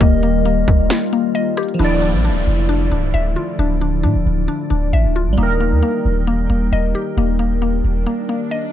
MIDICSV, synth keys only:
0, 0, Header, 1, 2, 480
1, 0, Start_track
1, 0, Key_signature, -1, "minor"
1, 0, Tempo, 447761
1, 8, Time_signature, 4, 2, 24, 8
1, 9353, End_track
2, 0, Start_track
2, 0, Title_t, "Synth keys"
2, 0, Program_c, 0, 88
2, 0, Control_c, 0, 64, 127
2, 0, Note_on_c, 0, 55, 88
2, 0, Note_on_c, 0, 63, 70
2, 0, Note_on_c, 0, 70, 96
2, 1857, Note_off_c, 0, 55, 0
2, 1870, Note_on_c, 0, 53, 71
2, 1884, Note_off_c, 0, 63, 0
2, 1911, Note_off_c, 0, 70, 0
2, 1924, Note_on_c, 0, 64, 67
2, 1939, Control_c, 0, 64, 0
2, 1978, Note_on_c, 0, 74, 85
2, 2150, Control_c, 0, 64, 127
2, 5695, Note_off_c, 0, 53, 0
2, 5711, Note_on_c, 0, 55, 75
2, 5723, Note_off_c, 0, 64, 0
2, 5750, Note_off_c, 0, 74, 0
2, 5766, Note_on_c, 0, 63, 69
2, 5783, Control_c, 0, 64, 0
2, 5820, Note_on_c, 0, 70, 88
2, 5956, Control_c, 0, 64, 127
2, 9353, Note_off_c, 0, 55, 0
2, 9353, Note_off_c, 0, 63, 0
2, 9353, Note_off_c, 0, 70, 0
2, 9353, End_track
0, 0, End_of_file